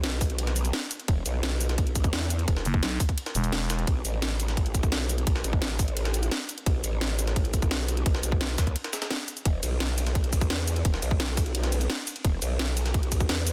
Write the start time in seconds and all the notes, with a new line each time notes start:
Already playing: B1
0.04 snare, closed hi-hat, ride
0.21 kick, open hi-hat, ride, shaker
0.30 closed hi-hat
0.38 closed hi-hat, ride
0.47 snare, closed hi-hat
0.56 closed hi-hat, ride, shaker
0.65 closed hi-hat, ride, shaker
0.73 snare, closed hi-hat, open hi-hat
0.91 closed hi-hat, ride, shaker
1.00 closed hi-hat
1.08 E1, kick, closed hi-hat, ride
1.26 B1, closed hi-hat, ride, shaker
1.43 snare, closed hi-hat, ride
1.61 closed hi-hat, ride, shaker
1.69 snare, closed hi-hat
1.78 kick, closed hi-hat, ride
1.87 closed hi-hat
1.95 kick, closed hi-hat, ride, shaker
2.04 kick, closed hi-hat, shaker
2.13 E2, snare, closed hi-hat, ride
2.30 closed hi-hat, ride, shaker
2.39 closed hi-hat
2.48 E1, kick, closed hi-hat, ride
2.57 snare
2.65 F#1, closed hi-hat, ride, shaker
2.74 kick
2.83 B1, snare, closed hi-hat, ride
3.00 kick, open hi-hat, ride, shaker
3.09 kick, closed hi-hat
3.18 closed hi-hat, ride
3.26 snare, closed hi-hat
3.35 E1, closed hi-hat, ride, shaker
3.44 closed hi-hat, ride, shaker
3.52 snare, closed hi-hat, ride
3.70 snare, closed hi-hat, ride, shaker
3.79 closed hi-hat
3.87 B1, kick, closed hi-hat, ride
4.05 A1, closed hi-hat, ride, shaker
4.22 snare, closed hi-hat, ride
4.40 closed hi-hat, ride, shaker
4.48 snare, closed hi-hat
4.57 kick, closed hi-hat, ride
4.66 closed hi-hat
4.75 kick, closed hi-hat, ride, shaker
4.83 kick, closed hi-hat, shaker
4.92 B1, snare, closed hi-hat, ride
5.09 closed hi-hat, ride, shaker
5.18 closed hi-hat
5.27 B1, kick, closed hi-hat, ride
5.36 snare
5.44 A1, closed hi-hat, ride, shaker
5.53 kick
5.62 snare, closed hi-hat, ride
5.79 kick, open hi-hat, ride, shaker
5.88 closed hi-hat
5.97 closed hi-hat, ride
6.05 snare, closed hi-hat
6.14 closed hi-hat, ride, shaker
6.23 closed hi-hat, ride, shaker
6.31 snare, closed hi-hat, open hi-hat
6.49 closed hi-hat, ride, shaker
6.58 closed hi-hat
6.66 B1, kick, closed hi-hat, ride
6.84 A1, closed hi-hat, ride, shaker
7.01 snare, closed hi-hat, ride
7.19 closed hi-hat, ride, shaker
7.27 snare, closed hi-hat
7.36 kick, closed hi-hat, ride
7.45 closed hi-hat
7.54 kick, closed hi-hat, ride, shaker
7.62 kick, closed hi-hat, shaker
7.71 B1, snare, closed hi-hat, ride
7.88 closed hi-hat, ride, shaker
7.97 closed hi-hat
8.06 B1, kick, closed hi-hat, ride
8.15 snare
8.23 B1, closed hi-hat, ride, shaker
8.32 kick
8.41 snare, closed hi-hat, ride
8.58 D#2, kick, snare, open hi-hat, ride, shaker
8.67 kick, closed hi-hat
8.76 closed hi-hat, ride
8.84 snare, closed hi-hat
8.93 snare, closed hi-hat, ride, shaker
9.02 snare, closed hi-hat, ride, shaker
9.11 snare, closed hi-hat, open hi-hat
9.28 closed hi-hat, ride, shaker
9.37 closed hi-hat, shaker
9.45 E1, kick, closed hi-hat, ride
9.63 B1, closed hi-hat, ride, shaker
9.80 snare, closed hi-hat, ride
9.98 closed hi-hat, ride, shaker
10.07 snare, closed hi-hat
10.15 kick, closed hi-hat, ride
10.24 closed hi-hat
10.33 kick, closed hi-hat, ride, shaker
10.41 kick, closed hi-hat, shaker
10.50 E2, snare, closed hi-hat, ride
10.68 closed hi-hat, ride, shaker
10.76 closed hi-hat
10.85 E1, kick, closed hi-hat, ride
10.94 snare
11.02 B1, closed hi-hat, ride, shaker
11.11 kick
11.20 snare, closed hi-hat, ride
11.37 kick, open hi-hat, ride, shaker
11.46 closed hi-hat
11.55 closed hi-hat, ride
11.63 snare, closed hi-hat
11.72 closed hi-hat, ride, shaker
11.81 closed hi-hat, ride, shaker
11.90 snare, closed hi-hat, open hi-hat
12.07 closed hi-hat, ride, shaker
12.16 closed hi-hat
12.25 E1, kick, closed hi-hat, ride
12.42 B1, closed hi-hat, ride, shaker
12.59 snare, closed hi-hat, ride
12.77 closed hi-hat, ride, shaker
12.86 snare, closed hi-hat
12.94 kick, closed hi-hat, ride
13.03 closed hi-hat
13.12 kick, closed hi-hat, ride, shaker
13.20 kick, closed hi-hat, shaker
13.29 E2, snare, closed hi-hat, ride
13.47 closed hi-hat, ride, shaker